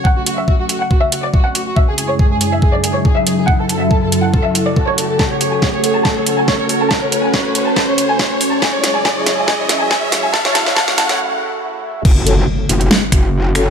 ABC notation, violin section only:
X:1
M:4/4
L:1/16
Q:"Swing 16ths" 1/4=140
K:F#m
V:1 name="Violin section"
f F F e F F F f F e F d F f F F | e G G c G G G e G d G c G e G G | f A A e A A A f A e A d A c A A | a c c g c c c a a c c g c c c a |
a c c g c c c a a c c g c c c a | g c c g g c c g g c c g g c c g | a c a c a c a c z8 | z16 |]